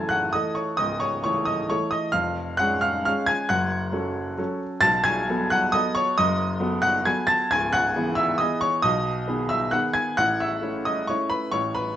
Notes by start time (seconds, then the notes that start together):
Already playing: F#1 F#2 E3 A3 A4 G#5 A5 G#6 A6
0.09 F#5 F#6
0.33 E3 A3 A4 D#5 D#6
0.55 C#5 C#6
0.77 C#1 C#2 D#5 D#6
1.00 C#5 C#6
1.24 E3 A3 A4 C#5 C#6
1.45 D#5 D#6
1.70 E3 A3 A4 C#5 C#6
1.91 D#5 D#6
2.12 F1 F2 F5 F6
2.57 G#3 C#4 G#4 F#5 F#6
2.81 F5 F6
3.05 G#3 C#4 G#4 F5 F6
3.26 G#5 G#6
3.49 F#1 F#2 F#5 F#6
3.92 F#3 C#4 A4
4.37 F#3 C#4 A4
4.81 B1 B2 A5 A6
5.04 G#5 G#6
5.29 F#3 B3 A4
5.50 F#5 F#6
5.72 F#3 B3 A4 D#5 D#6
5.95 C#5 C#6
6.18 F#1 F#2 D#5 D#6
6.60 F#3 B3 A4
6.82 F#5 F#6
7.05 F#3 B3 A4 G#5 G#6
7.27 A5 A6
7.51 C#1 C#2 G#5 G#6
7.73 F#5 F#6
7.96 E3 B3 G#4
8.15 E5 E6
8.38 E3 B3 G#4 D#5 D#6
8.61 C#5 C#6
8.82 B1 B2 D#5 D#6
9.28 D#3 B3 G#4
9.49 E5 E6
9.71 D#3 B3 G#4 F#5 F#6
9.94 G#5 G#6
10.17 A1 A2 F#5 F#6
10.40 E5 E6
10.62 A3 C#4 E4
10.85 D#5 D#6
11.07 A3 C#4 E4 C#5 C#6
11.30 B4 B5
11.52 A1 A2 C#5 C#6
11.75 B4 B5